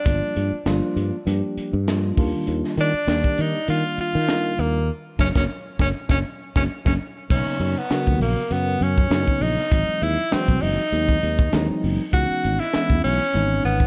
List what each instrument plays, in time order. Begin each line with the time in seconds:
Already playing: tenor saxophone D4
0.05 fretless electric bass G1, tine electric piano F3 G3 A#3 D4 F4, kick, closed hi-hat
0.36 fretless electric bass G2, closed hi-hat
0.52 muted fretless electric bass stroke
0.66 fretless electric bass G1, tine electric piano F3 G3 A#3 D4 F4, snare, closed hi-hat
0.96 fretless electric bass G2, closed hi-hat
1.26 fretless electric bass G2, tine electric piano F3 G3 A#3 D4 G4, closed hi-hat
1.57 muted fretless electric bass stroke, closed hi-hat
1.73 fretless electric bass G2
1.87 tine electric piano F3 G3 A#3 D4 F4, snare, closed hi-hat
2.17 fretless electric bass D#2, tine electric piano D#3 G3 A#3 D4 F4, kick, open hi-hat
2.47 fretless electric bass D#2, closed hi-hat
2.64 snare
2.77 fretless electric bass D#3, tenor saxophone D4, snare, closed hi-hat
2.94 muted fretless electric bass stroke
3.07 fretless electric bass D#2, tine electric piano D#3 G3 A#3 D4 G4, snare, closed hi-hat
3.24 kick
3.38 fretless electric bass D#3, tenor saxophone D#4, closed hi-hat
3.68 fretless electric bass D#3, tine electric piano D#3 G3 A#3 D4 F4, tenor saxophone F4, closed hi-hat
3.98 tenor saxophone F4, muted fretless electric bass stroke, closed hi-hat
4.15 fretless electric bass D#3
4.28 tine electric piano D#3 G3 A#3 D4 F4, snare, closed hi-hat
4.59 fretless electric bass D#2, tenor saxophone A#3, closed hi-hat
5.19 fretless electric bass F#1, tine electric piano F#3 A#3 C#4, tenor saxophone C#4, kick, snare
5.35 fretless electric bass F#1, tine electric piano F#3 A#3 C#4, tenor saxophone C#4, kick, snare
5.79 fretless electric bass F#1, tine electric piano F#3 A#3 C#4, tenor saxophone C#4, kick, snare
6.09 fretless electric bass F#1, tine electric piano F#3 A#3 C#4, tenor saxophone C#4, kick, snare
6.56 fretless electric bass F#1, tine electric piano F#3 A#3 C#4, tenor saxophone C#4, kick, snare
6.85 fretless electric bass F#1, tine electric piano F#3 A#3 C#4, tenor saxophone C#4, kick, snare
7.29 fretless electric bass B1, tine electric piano C#3 F#3 A#3 B3 D#4, tenor saxophone C#4, kick, crash
7.60 fretless electric bass F#2, closed hi-hat
7.78 tenor saxophone B3
7.90 tine electric piano C#3 F#3 B3 F#4 A#4, muted fretless electric bass stroke, snare, closed hi-hat
8.07 fretless electric bass D#2, kick
8.20 fretless electric bass A#1, tenor saxophone A#3, open hi-hat
8.50 fretless electric bass F#2, tine electric piano C#3 F#3 B3 F#4 A#4, tenor saxophone B3, closed hi-hat
8.81 fretless electric bass F#2, tenor saxophone C#4, closed hi-hat
8.98 kick
9.10 fretless electric bass F#2, tine electric piano C#3 F#3 A#3 B3 D#4, snare, closed hi-hat
9.28 kick
9.41 fretless electric bass A#1, tenor saxophone D#4, open hi-hat
9.58 snare
9.71 fretless electric bass G#1, tine electric piano E3 F#3 G#3 C4 D#4, kick, closed hi-hat
10.02 fretless electric bass D#2, tenor saxophone E4, closed hi-hat
10.32 tine electric piano E3 F#3 G#3 C4 F#4, tenor saxophone C4, muted fretless electric bass stroke, snare, closed hi-hat
10.48 fretless electric bass C2, kick
10.61 fretless electric bass F#1, tenor saxophone D#4, open hi-hat
10.92 fretless electric bass D#2, tine electric piano D#3 F#3 G#3 C4 D#4, closed hi-hat
11.09 kick
11.22 fretless electric bass D#2, closed hi-hat
11.39 kick
11.52 fretless electric bass D#2, tine electric piano E3 F#3 G#3 C4 D#4, snare, closed hi-hat
11.70 muted fretless electric bass stroke
11.84 fretless electric bass F#1, open hi-hat
12.12 fretless electric bass C#2, tine electric piano E3 G#3 B3 C#4 D#4, tenor saxophone F#4, kick, closed hi-hat
12.43 fretless electric bass G#1, closed hi-hat
12.60 tenor saxophone E4, snare
12.73 tine electric piano E3 G#3 B3 C#4 E4, muted fretless electric bass stroke, snare, closed hi-hat
12.90 fretless electric bass E2, kick
13.04 fretless electric bass B1, tenor saxophone C#4, open hi-hat
13.34 fretless electric bass G#1, tine electric piano E3 G#3 B3 C#4 D#4, closed hi-hat
13.65 fretless electric bass G#1, tenor saxophone B3, closed hi-hat
13.80 kick